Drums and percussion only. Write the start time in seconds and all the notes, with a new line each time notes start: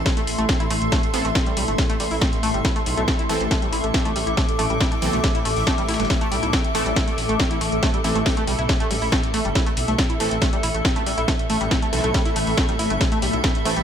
0.06 kick, snare, closed hi-hat
0.17 closed hi-hat
0.27 closed hi-hat, open hi-hat
0.38 closed hi-hat
0.49 kick, snare, closed hi-hat
0.60 closed hi-hat
0.70 closed hi-hat, open hi-hat
0.82 closed hi-hat
0.92 kick, snare, closed hi-hat
1.03 closed hi-hat
1.14 closed hi-hat, open hi-hat
1.25 closed hi-hat
1.35 kick, snare, closed hi-hat
1.46 closed hi-hat
1.57 closed hi-hat, open hi-hat
1.68 closed hi-hat
1.78 kick, snare, closed hi-hat
1.89 snare, closed hi-hat
2.00 closed hi-hat, open hi-hat
2.11 open hi-hat
2.21 kick, snare, closed hi-hat
2.33 snare, closed hi-hat
2.43 closed hi-hat, open hi-hat
2.54 closed hi-hat
2.65 kick, snare, closed hi-hat
2.76 closed hi-hat
2.86 closed hi-hat, open hi-hat
2.97 closed hi-hat
3.08 kick, snare, closed hi-hat
3.19 closed hi-hat
3.29 closed hi-hat, open hi-hat
3.41 closed hi-hat
3.51 kick, snare, closed hi-hat
3.62 closed hi-hat
3.73 closed hi-hat, open hi-hat
3.84 closed hi-hat
3.94 kick, snare, closed hi-hat
4.05 closed hi-hat
4.16 closed hi-hat, open hi-hat
4.27 closed hi-hat
4.37 kick, snare, closed hi-hat
4.49 closed hi-hat
4.59 closed hi-hat, open hi-hat
4.70 closed hi-hat
4.81 kick, snare, closed hi-hat
4.92 closed hi-hat
5.02 closed hi-hat, open hi-hat
5.13 closed hi-hat
5.24 kick, snare, closed hi-hat
5.35 snare, closed hi-hat
5.45 closed hi-hat, open hi-hat
5.57 open hi-hat
5.67 kick, snare, closed hi-hat
5.78 snare, closed hi-hat
5.88 snare, closed hi-hat, open hi-hat
5.94 snare, closed hi-hat
6.00 snare, closed hi-hat
6.05 snare, closed hi-hat
6.10 kick, snare, closed hi-hat
6.21 closed hi-hat
6.32 closed hi-hat, open hi-hat
6.43 closed hi-hat
6.53 kick, snare, closed hi-hat
6.64 closed hi-hat
6.75 closed hi-hat, open hi-hat
6.86 closed hi-hat
6.96 kick, snare, closed hi-hat
7.08 closed hi-hat
7.18 closed hi-hat, open hi-hat
7.29 closed hi-hat
7.40 kick, snare, closed hi-hat
7.51 closed hi-hat
7.61 closed hi-hat, open hi-hat
7.72 closed hi-hat
7.83 kick, snare, closed hi-hat
7.94 closed hi-hat
8.04 closed hi-hat, open hi-hat
8.15 closed hi-hat
8.26 kick, snare, closed hi-hat, open hi-hat
8.37 closed hi-hat
8.47 closed hi-hat, open hi-hat
8.59 snare, closed hi-hat
8.69 kick, snare, closed hi-hat
8.80 snare, closed hi-hat
8.91 closed hi-hat, open hi-hat
9.02 open hi-hat
9.12 kick, snare, closed hi-hat
9.23 snare, closed hi-hat
9.34 closed hi-hat, open hi-hat
9.45 closed hi-hat
9.55 kick, snare, closed hi-hat
9.66 closed hi-hat
9.77 closed hi-hat, open hi-hat
9.88 closed hi-hat
9.98 kick, snare, closed hi-hat
10.10 closed hi-hat
10.20 closed hi-hat, open hi-hat
10.31 closed hi-hat
10.42 kick, snare, closed hi-hat
10.53 closed hi-hat
10.63 closed hi-hat, open hi-hat
10.74 closed hi-hat
10.85 kick, snare, closed hi-hat
10.96 closed hi-hat
11.06 closed hi-hat, open hi-hat
11.18 closed hi-hat
11.28 kick, snare, closed hi-hat
11.39 closed hi-hat
11.50 closed hi-hat, open hi-hat
11.61 closed hi-hat
11.71 kick, snare, closed hi-hat
11.82 closed hi-hat
11.93 closed hi-hat, open hi-hat
12.04 closed hi-hat
12.14 kick, snare, closed hi-hat
12.25 snare, closed hi-hat
12.36 closed hi-hat, open hi-hat
12.47 open hi-hat
12.57 kick, snare, closed hi-hat
12.69 snare, closed hi-hat
12.79 closed hi-hat, open hi-hat
12.90 closed hi-hat
13.01 kick, snare, closed hi-hat
13.12 closed hi-hat
13.22 closed hi-hat, open hi-hat
13.33 closed hi-hat
13.44 kick, snare, closed hi-hat
13.55 closed hi-hat
13.65 closed hi-hat, open hi-hat
13.77 closed hi-hat